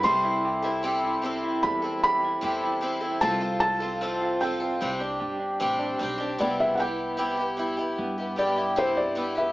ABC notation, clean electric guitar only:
X:1
M:4/4
L:1/16
Q:1/4=76
K:C
V:1 name="Clean electric guitar"
G, E G E G E C E G, E G E G E C E | F, F A F A F C F G, D G D G D C D | B,2 E2 G2 E2 B,2 G2 E2 B,2 |]